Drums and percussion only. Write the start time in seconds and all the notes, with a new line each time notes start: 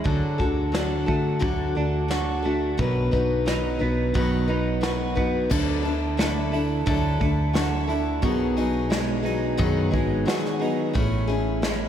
0.06 kick, open hi-hat
0.40 kick
0.74 snare, open hi-hat
1.08 kick
1.42 kick, open hi-hat
2.10 snare, open hi-hat
2.79 kick, open hi-hat
3.13 kick
3.47 snare, open hi-hat
4.15 kick, open hi-hat
4.83 snare
5.17 kick
5.51 kick, crash
5.85 open hi-hat
6.19 snare, open hi-hat
6.53 open hi-hat
6.87 kick, open hi-hat
7.21 kick, open hi-hat
7.55 snare, open hi-hat
7.89 open hi-hat
8.23 kick, open hi-hat
8.57 open hi-hat
8.92 snare, open hi-hat
9.26 open hi-hat
9.60 kick, open hi-hat
9.94 kick, open hi-hat
10.28 snare, open hi-hat
10.46 snare
10.62 open hi-hat
10.95 kick, open hi-hat
11.29 open hi-hat
11.63 snare, open hi-hat